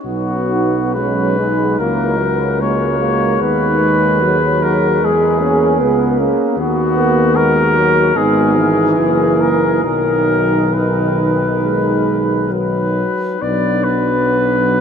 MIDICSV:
0, 0, Header, 1, 6, 480
1, 0, Start_track
1, 0, Key_signature, 5, "major"
1, 0, Tempo, 900901
1, 29, Time_signature, 4, 2, 24, 8
1, 510, Tempo, 833333
1, 990, Tempo, 806452
1, 2910, Tempo, 780234
1, 4350, Tempo, 809717
1, 5310, Tempo, 860832
1, 5790, Tempo, 894188
1, 7710, Tempo, 843882
1, 8502, End_track
2, 0, Start_track
2, 0, Title_t, "Flugelhorn"
2, 0, Program_c, 0, 56
2, 20, Note_on_c, 0, 66, 53
2, 497, Note_on_c, 0, 71, 57
2, 505, Note_off_c, 0, 66, 0
2, 989, Note_on_c, 0, 70, 60
2, 998, Note_off_c, 0, 71, 0
2, 1476, Note_on_c, 0, 73, 60
2, 1485, Note_off_c, 0, 70, 0
2, 1954, Note_off_c, 0, 73, 0
2, 1958, Note_on_c, 0, 71, 72
2, 2678, Note_on_c, 0, 70, 64
2, 2687, Note_off_c, 0, 71, 0
2, 2929, Note_on_c, 0, 68, 60
2, 2938, Note_off_c, 0, 70, 0
2, 3645, Note_off_c, 0, 68, 0
2, 3881, Note_on_c, 0, 66, 71
2, 4351, Note_on_c, 0, 70, 88
2, 4360, Note_off_c, 0, 66, 0
2, 4830, Note_on_c, 0, 68, 67
2, 4839, Note_off_c, 0, 70, 0
2, 5550, Note_on_c, 0, 70, 63
2, 5558, Note_off_c, 0, 68, 0
2, 5791, Note_off_c, 0, 70, 0
2, 5793, Note_on_c, 0, 70, 68
2, 6270, Note_on_c, 0, 71, 51
2, 6278, Note_off_c, 0, 70, 0
2, 7231, Note_off_c, 0, 71, 0
2, 7234, Note_on_c, 0, 71, 55
2, 7711, Note_on_c, 0, 74, 65
2, 7720, Note_off_c, 0, 71, 0
2, 7950, Note_on_c, 0, 71, 70
2, 7958, Note_off_c, 0, 74, 0
2, 8502, Note_off_c, 0, 71, 0
2, 8502, End_track
3, 0, Start_track
3, 0, Title_t, "French horn section"
3, 0, Program_c, 1, 60
3, 25, Note_on_c, 1, 63, 41
3, 249, Note_off_c, 1, 63, 0
3, 275, Note_on_c, 1, 63, 53
3, 509, Note_off_c, 1, 63, 0
3, 516, Note_on_c, 1, 61, 45
3, 753, Note_on_c, 1, 63, 46
3, 758, Note_off_c, 1, 61, 0
3, 988, Note_off_c, 1, 63, 0
3, 995, Note_on_c, 1, 64, 46
3, 1233, Note_off_c, 1, 64, 0
3, 1244, Note_on_c, 1, 66, 42
3, 1962, Note_off_c, 1, 66, 0
3, 1966, Note_on_c, 1, 63, 41
3, 2428, Note_off_c, 1, 63, 0
3, 2444, Note_on_c, 1, 68, 54
3, 3873, Note_on_c, 1, 66, 46
3, 3879, Note_off_c, 1, 68, 0
3, 4250, Note_off_c, 1, 66, 0
3, 4354, Note_on_c, 1, 66, 49
3, 4816, Note_off_c, 1, 66, 0
3, 4825, Note_on_c, 1, 63, 48
3, 5305, Note_on_c, 1, 64, 52
3, 5311, Note_off_c, 1, 63, 0
3, 5787, Note_off_c, 1, 64, 0
3, 5792, Note_on_c, 1, 63, 45
3, 7508, Note_off_c, 1, 63, 0
3, 7710, Note_on_c, 1, 62, 46
3, 8502, Note_off_c, 1, 62, 0
3, 8502, End_track
4, 0, Start_track
4, 0, Title_t, "Euphonium"
4, 0, Program_c, 2, 58
4, 27, Note_on_c, 2, 54, 44
4, 509, Note_on_c, 2, 56, 40
4, 518, Note_off_c, 2, 54, 0
4, 992, Note_on_c, 2, 54, 42
4, 1001, Note_off_c, 2, 56, 0
4, 1475, Note_on_c, 2, 58, 48
4, 1484, Note_off_c, 2, 54, 0
4, 1704, Note_off_c, 2, 58, 0
4, 1708, Note_on_c, 2, 56, 46
4, 2413, Note_off_c, 2, 56, 0
4, 2439, Note_on_c, 2, 54, 50
4, 2671, Note_off_c, 2, 54, 0
4, 2682, Note_on_c, 2, 54, 51
4, 2910, Note_off_c, 2, 54, 0
4, 2918, Note_on_c, 2, 56, 55
4, 3158, Note_on_c, 2, 58, 58
4, 3167, Note_off_c, 2, 56, 0
4, 3396, Note_on_c, 2, 59, 56
4, 3405, Note_off_c, 2, 58, 0
4, 3634, Note_on_c, 2, 61, 54
4, 3644, Note_off_c, 2, 59, 0
4, 3873, Note_off_c, 2, 61, 0
4, 3878, Note_on_c, 2, 59, 57
4, 4108, Note_off_c, 2, 59, 0
4, 4114, Note_on_c, 2, 58, 57
4, 4352, Note_on_c, 2, 56, 56
4, 4361, Note_off_c, 2, 58, 0
4, 4591, Note_on_c, 2, 54, 49
4, 4600, Note_off_c, 2, 56, 0
4, 4822, Note_off_c, 2, 54, 0
4, 4826, Note_on_c, 2, 59, 56
4, 5136, Note_off_c, 2, 59, 0
4, 5313, Note_on_c, 2, 58, 50
4, 5793, Note_on_c, 2, 54, 41
4, 5801, Note_off_c, 2, 58, 0
4, 6220, Note_off_c, 2, 54, 0
4, 6260, Note_on_c, 2, 51, 47
4, 6728, Note_off_c, 2, 51, 0
4, 6750, Note_on_c, 2, 56, 52
4, 7223, Note_on_c, 2, 54, 40
4, 7231, Note_off_c, 2, 56, 0
4, 7703, Note_off_c, 2, 54, 0
4, 7706, Note_on_c, 2, 59, 48
4, 8502, Note_off_c, 2, 59, 0
4, 8502, End_track
5, 0, Start_track
5, 0, Title_t, "Trombone"
5, 0, Program_c, 3, 57
5, 28, Note_on_c, 3, 59, 43
5, 513, Note_on_c, 3, 54, 42
5, 521, Note_off_c, 3, 59, 0
5, 753, Note_off_c, 3, 54, 0
5, 756, Note_on_c, 3, 56, 50
5, 985, Note_off_c, 3, 56, 0
5, 995, Note_on_c, 3, 58, 47
5, 1229, Note_on_c, 3, 54, 46
5, 1238, Note_off_c, 3, 58, 0
5, 1469, Note_on_c, 3, 56, 43
5, 1478, Note_off_c, 3, 54, 0
5, 1707, Note_off_c, 3, 56, 0
5, 1711, Note_on_c, 3, 58, 54
5, 1949, Note_on_c, 3, 59, 45
5, 1958, Note_off_c, 3, 58, 0
5, 2185, Note_on_c, 3, 56, 49
5, 2194, Note_off_c, 3, 59, 0
5, 2426, Note_on_c, 3, 54, 42
5, 2434, Note_off_c, 3, 56, 0
5, 2904, Note_on_c, 3, 56, 53
5, 2913, Note_off_c, 3, 54, 0
5, 3144, Note_on_c, 3, 61, 60
5, 3153, Note_off_c, 3, 56, 0
5, 3394, Note_on_c, 3, 59, 53
5, 3403, Note_off_c, 3, 61, 0
5, 3635, Note_on_c, 3, 58, 60
5, 3644, Note_off_c, 3, 59, 0
5, 3878, Note_on_c, 3, 59, 60
5, 3888, Note_off_c, 3, 58, 0
5, 4663, Note_off_c, 3, 59, 0
5, 4816, Note_on_c, 3, 56, 59
5, 5063, Note_on_c, 3, 52, 61
5, 5072, Note_off_c, 3, 56, 0
5, 5789, Note_off_c, 3, 52, 0
5, 5796, Note_on_c, 3, 51, 46
5, 7456, Note_off_c, 3, 51, 0
5, 7712, Note_on_c, 3, 54, 45
5, 8502, Note_off_c, 3, 54, 0
5, 8502, End_track
6, 0, Start_track
6, 0, Title_t, "Tuba"
6, 0, Program_c, 4, 58
6, 25, Note_on_c, 4, 35, 45
6, 965, Note_off_c, 4, 35, 0
6, 990, Note_on_c, 4, 37, 46
6, 1936, Note_off_c, 4, 37, 0
6, 1956, Note_on_c, 4, 39, 50
6, 2909, Note_on_c, 4, 40, 53
6, 2919, Note_off_c, 4, 39, 0
6, 3398, Note_on_c, 4, 37, 50
6, 3407, Note_off_c, 4, 40, 0
6, 3713, Note_off_c, 4, 37, 0
6, 3868, Note_on_c, 4, 39, 56
6, 4797, Note_off_c, 4, 39, 0
6, 4825, Note_on_c, 4, 32, 56
6, 5301, Note_off_c, 4, 32, 0
6, 5308, Note_on_c, 4, 30, 54
6, 5779, Note_off_c, 4, 30, 0
6, 5791, Note_on_c, 4, 35, 47
6, 7508, Note_off_c, 4, 35, 0
6, 7718, Note_on_c, 4, 35, 51
6, 8502, Note_off_c, 4, 35, 0
6, 8502, End_track
0, 0, End_of_file